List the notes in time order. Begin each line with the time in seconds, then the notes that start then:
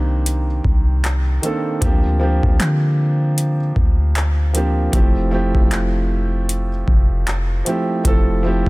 Already playing: C2 D#3 A#3 C4 D4 G4 C5
0.26 closed hi-hat
0.64 C2, kick
1.04 clap, closed hi-hat
1.42 D#3 A#3 C4 D4 A4, closed hi-hat
1.81 D2 F3 A#3 C4 D4 G4, kick, closed hi-hat
2.20 F3 A#3 C4 D4 G4
2.43 D2, kick
2.60 D3, clap, closed hi-hat
3.38 closed hi-hat
3.76 D2, kick
4.15 clap, closed hi-hat
4.53 F3 A#3 C4 D4 G4, closed hi-hat
4.92 F1 F3 A3 C4 E4 G4, kick, closed hi-hat
5.31 F3 A3 C4 E4 G4
5.55 F1, kick
5.71 clap, closed hi-hat
6.49 closed hi-hat
6.88 F1, kick
7.27 clap, closed hi-hat
7.65 F3 A3 C4 E4 G4, closed hi-hat
8.04 F1 F3 A3 C4 E4 A4, kick, closed hi-hat
8.43 F3 A3 C4 E4 G4